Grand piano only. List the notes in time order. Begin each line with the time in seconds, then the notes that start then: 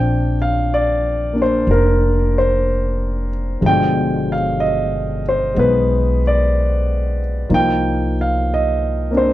Already playing: F3 C4 D4 G5
0.42 F5
0.74 D5
1.33 A#3 D4
1.42 C5
1.71 A#4
2.38 C5
3.61 B2 F3 G#3
3.65 D3 G5
4.32 F5
4.60 D#5
5.29 C5
5.54 G#3 B3
5.59 B4
6.27 D5
7.49 F3 A#3 D#4 F4
7.54 G5
8.21 F5
8.54 D#5
9.11 A#3 C4 D4
9.17 C5